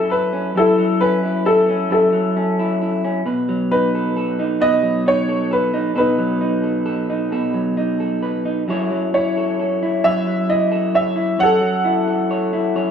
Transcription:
Already playing: F#2 F#3 C#4 E4 A4
0.10 A4 B4
0.33 C#4
0.55 F#2 E4 A4
0.78 F#3
1.01 C#4 B4
1.23 E4
1.45 E4 A4
1.69 C#4
1.90 F#2 E4 A4
2.13 F#3
2.37 C#4
2.59 E4
2.81 E4
3.04 C#4
3.26 B2 B4
3.49 F#3
3.71 D#4 B4
3.95 A4
4.17 A4
4.39 D#4
4.61 B2 B4 D#5
4.83 F#3
5.06 D#4 C#5
5.29 A4
5.51 A4 B4
5.74 D#4
5.95 B2 A4 B4
6.00 D#4
6.18 F#3
6.41 D#4
6.63 A4
6.86 A4
7.10 D#4
7.32 B2 A4
7.54 F#3
7.77 D#4
8.00 A4
8.23 B4
8.45 D#4
8.68 F#2 F#3 E4 A4 C#5
8.91 F#3
9.14 E4 C#5
9.37 A4
9.60 A4
9.83 E4
10.04 F#2 C#5 E5
10.27 F#3
10.49 E4 D#5
10.72 A4
10.94 C#5 E5
11.16 E4
11.39 F#2 C#5 F#5
11.43 A4
11.61 F#3
11.84 E4
12.08 A4
12.31 C#5
12.53 E4
12.75 F#2 C#5

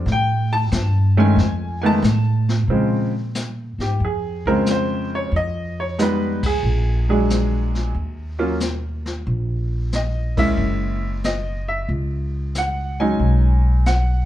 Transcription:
0.06 A2, brush sweep, snare
0.12 G5
0.53 A5
0.72 G2, snare, hi-hat pedal
1.17 D#3 G#3 A3 C#4 G#5
1.36 F2, brush sweep, snare
1.82 D#3 G#3 A3 B3 G#5
1.86 A5
2.02 A2, snare, hi-hat pedal
2.49 snare
2.68 A#2 C#3 F3 G#3 C4, brush sweep
3.35 snare, hi-hat pedal
3.78 G#2 G4, snare
4.00 F2, brush sweep
4.05 G#4
4.46 C#3 F3 G#3 C4 A#4, kick
4.66 snare, hi-hat pedal
4.71 C5
5.15 C#5
5.32 F2, brush sweep
5.36 D#5
5.80 C#5
5.98 G3 G#3 B3 D#4 B4, snare, hi-hat pedal
6.43 G#4, kick, ride
6.63 A#1, brush sweep
7.09 F#3 G#3 D4 G#4
7.30 snare, hi-hat pedal
7.75 snare
7.94 D#2, brush sweep
8.39 F#3 A#3 C#4 F4
8.60 snare, hi-hat pedal
9.06 snare
9.27 A#1, brush sweep
9.92 D#5, snare, hi-hat pedal
10.37 G#3 A#3 C#4 E4 E5, kick, ride
10.57 F#1, brush sweep
11.24 D#5, snare, hi-hat pedal
11.68 E5
11.89 C#2, brush sweep
12.55 F#5, snare, hi-hat pedal
13.00 F#3 G#3 C#4 D#4 G#5
13.20 B1, brush sweep
13.86 F#5, snare, hi-hat pedal

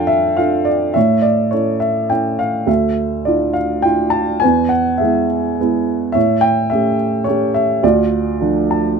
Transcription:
Already playing: F2 D4 F4 A4 F5 G5 A5
0.07 E5
0.37 D4 F4 A4 F5
0.65 D5
0.94 A2 C#5 E5
1.22 D5
1.51 C#4 E4 A4 C#5
1.80 E5
2.10 C#4 E4 A4 G5
2.39 F5
2.67 D2 A4 E5
3.25 D4 E4 F4 D5
3.53 F5
3.82 D4 E4 F4 G5
4.10 A5
4.40 E2 B4 G#5
4.69 F#5
4.98 G#3 G#4 E5
5.03 B3 E4
5.60 G#3 B3 E4
6.12 A2 C#5 E5
6.41 G5
6.70 A3 C#4 G4 E5
7.24 A3 G4 C#5
7.28 C#4
7.54 E5
7.83 D2 F4 D5
8.41 F3 A3 D4
8.71 A5

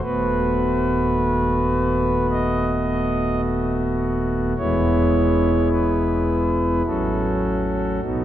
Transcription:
0.03 D#1 D#2 A3 B3 F#4 B4
2.31 D#5
4.58 E1 E2 G#3 B3 E4 C#5
5.71 B4
6.86 A1 A2 F#3 C#4 F#4 A4
8.02 B1 B2 F#3 B3 D#4 F#4

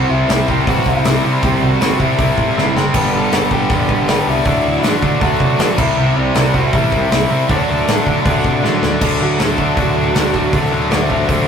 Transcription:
Already playing: C3 G3 C4 E4
0.10 C2 E4 E5
0.29 C2 C3 G3 C4, snare, open hi-hat
0.48 C2 C3 G3 C4 E4 G4 G5, kick
0.67 A1 C3 G3 C4 F#4 F#5, kick, open hi-hat
0.86 C2 E4 E5, kick
1.05 C2 C3 G3 C4, snare, open hi-hat
1.23 C3 G3 C4 E4
1.43 C2 C3 G3 C4 G4 G5, kick, open hi-hat
1.61 C2 F#4 F#5
1.80 G1 C3 G3 C4, snare, open hi-hat
1.99 C3 G3 C4 E4 E5, kick
2.18 C2 C3 G3 C4, kick, open hi-hat
2.38 A2, kick
2.55 G1 C3 G3 C4, snare
2.74 F#1 C3 G3 C4 G4 G5, snare
2.94 G1 G2 D3 G3 B3 D4, kick, open hi-hat, crash
3.12 G1 A4 A5
3.32 G1 G2 D3 G3, snare, open hi-hat
3.51 G1 G2 D3 G3 G4 G5, kick
3.70 E1 G2 D3 G3 B3 D4, kick, open hi-hat
3.89 G1, kick
4.08 G1 G2 D3 G3 G4 G5, snare, open hi-hat
4.27 C2 G2 D3 G3 E4 E5
4.45 D2 D3 F#3 A3 D4, kick, open hi-hat
4.64 D2
4.83 A1 D3 A3 D4 D5, snare, open hi-hat
5.02 D3 A3 D4, kick
5.21 D2 D3 F#3 A3 D4 F#4 F#5, kick, open hi-hat
5.40 C3, kick
5.59 A1 D3 A3 D4, snare, open hi-hat
5.77 C2 C3 G3 C4 E4 E5, kick, crash
5.97 C2 C3 G3 C4
6.16 C2 D4 D5
6.35 C2 C3 G3 C4, snare, open hi-hat
6.54 C2 C3 G3 C4 E4 F#4 F#5, kick
6.73 A1 C3 G3 C4 E4 E5, kick, open hi-hat
6.92 C2, kick
7.11 C2 C3 G3 C4, snare, open hi-hat
7.31 C3 G3 C4
7.49 D2 D3 F#3 A3 D4 D5, kick, open hi-hat
7.69 D2
7.88 A1 D3 A3 D4, snare, open hi-hat
8.06 D3 A3 D4, kick
8.25 D2 D3 F#3 A3 D4, kick, open hi-hat
8.44 C3, kick
8.63 A1 D3 A3 D4, snare
8.82 D2 D3 A3 D4, snare
9.01 D2 D3 F#3 A3 D4 A4, kick, crash
9.20 D2 D3 A3 D4 F#4
9.39 D2 D3 A3 D4 A4, snare, open hi-hat
9.58 D3 F#3 A3 D4, kick
9.76 D2 D3 A3 D4 F#4, kick, open hi-hat
9.96 D2 D3 A3 D4
10.15 D2 D3 F#3 A3 D4, snare, open hi-hat
10.34 D2 D3 A3 D4, kick
10.52 D2 D3 F#3 A3 D4, kick, open hi-hat
10.71 D2 D3 A3 D4
10.91 D2 D3 A3 D4 C5 E5, snare, open hi-hat
11.09 D3 F#3 A3 D4 C5 E5, kick
11.29 D2 D3 A3 D4 C5 E5, kick, open hi-hat

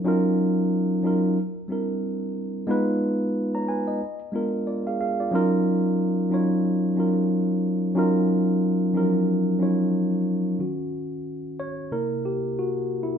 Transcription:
0.04 F#3 C#4 D#4 F4 A#4
1.03 F#3 C#4 D#4 F4
1.07 A#4
1.68 G3 C4 D4 E4
1.72 A#4
2.67 G#3 B3 D#4 F4 B4
3.55 C#5 A#5
3.69 B4 G#5
3.88 D#5
4.32 G#3 B3 D4 F4 A#4
4.67 F4 D5
4.87 G#4 F5
5.01 G#4 F5
5.20 F4 D5
5.31 F#3 C#4 D#4 F4 A#4
6.30 F#3 C#4 D#4 F4 C#5
6.96 F#3 C#4 D#4 F4
7.00 A#4
7.95 F#3 C#4 D#4 F4 A#4
8.93 F3 C#4 D#4 F4 A#4
9.00 F#3
9.59 F#3 C#4 D#4 F4
9.63 C#5
10.59 D#3 C#4 F#4
11.60 C#5
11.91 C3 A#3 E4 A#4
12.25 G4
12.59 F#4
13.03 E4

